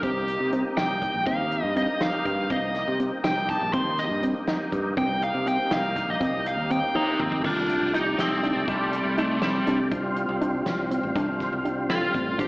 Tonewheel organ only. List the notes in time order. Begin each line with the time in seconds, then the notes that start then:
0.01 A#3 D#4 G4
1.25 A#3 D#4 G4
2.49 A#3 D#4 G4
3.72 A#3 D#4 G4
4.95 A#3 D#4 G4
6.19 A#3 D#4 G4
7.43 A3 G4 D5
9.91 G3 C4 F4
12.37 G3 C4 F4